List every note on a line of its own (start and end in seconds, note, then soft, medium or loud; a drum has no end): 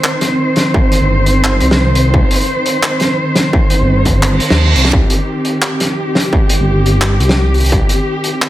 0.00 8.49 D#3 medium
0.00 8.49 C4 medium
0.00 4.91 C5 medium
0.04 clap loud
0.04 closed hi-hat medium
0.21 snare soft
0.21 closed hi-hat medium
0.56 snare medium
0.56 closed hi-hat medium
0.74 kick loud
0.92 closed hi-hat medium
1.01 1.60 G1 medium
1.26 closed hi-hat medium
1.44 clap loud
1.44 closed hi-hat medium
1.60 2.05 C2 loud
1.60 closed hi-hat medium
1.71 snare medium
1.95 closed hi-hat medium
2.06 2.13 C2 loud
2.14 2.23 C2 loud
2.14 kick loud
2.31 closed hi-hat medium
2.36 closed hi-hat medium
2.41 closed hi-hat medium
2.44 closed hi-hat soft
2.66 closed hi-hat medium
2.83 clap loud
2.83 closed hi-hat medium
3.00 snare soft
3.00 closed hi-hat medium
3.35 snare medium
3.35 closed hi-hat medium
3.53 kick loud
3.70 closed hi-hat medium
3.81 4.40 G1 medium
4.05 kick medium
4.05 closed hi-hat medium
4.23 clap loud
4.23 closed hi-hat medium
4.23 reverse cymbal medium
4.40 closed hi-hat medium
4.50 4.75 D#2 loud
4.50 snare medium
4.75 4.92 C2 medium
4.75 closed hi-hat medium
4.85 snare soft
4.92 5.02 C2 loud
4.92 8.49 G4 medium
4.92 kick loud
5.10 closed hi-hat medium
5.45 closed hi-hat medium
5.62 clap loud
5.62 closed hi-hat medium
5.80 snare soft
5.80 closed hi-hat loud
6.15 snare medium
6.20 closed hi-hat medium
6.33 kick loud
6.49 closed hi-hat medium
6.60 7.19 G1 medium
6.86 closed hi-hat medium
7.01 clap loud
7.01 closed hi-hat medium
7.20 7.63 C2 loud
7.20 closed hi-hat medium
7.29 snare medium
7.54 closed hi-hat soft
7.58 closed hi-hat soft
7.60 closed hi-hat medium
7.64 7.71 C2 loud
7.64 closed hi-hat medium
7.66 closed hi-hat medium
7.69 7.81 C2 loud
7.69 kick loud
7.69 closed hi-hat medium
7.89 closed hi-hat medium
8.24 closed hi-hat medium
8.41 clap loud
8.41 closed hi-hat medium